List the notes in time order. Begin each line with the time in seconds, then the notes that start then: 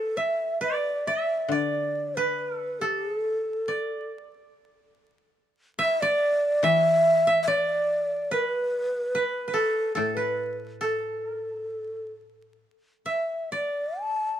Already playing: A4 B4
0.17 E5
0.61 D5
1.07 E5
1.48 D3 D5 E5
1.54 D5
2.15 B4
2.56 A4
2.80 G4 A4
3.04 G#4
3.18 A4
3.68 D5
5.79 E5
6.01 D5
6.63 E3 E5
7.27 E5
7.43 E5
7.47 C#5 D5
7.59 D5
8.31 A#4 B4
8.45 B4
9.15 B4
9.48 B4
9.53 A4
9.95 A2 A4
10.15 B4
10.81 A4
11.27 A#4
11.40 A4
11.54 A#4
11.66 A4
13.06 E5
13.52 D5
14.00 A5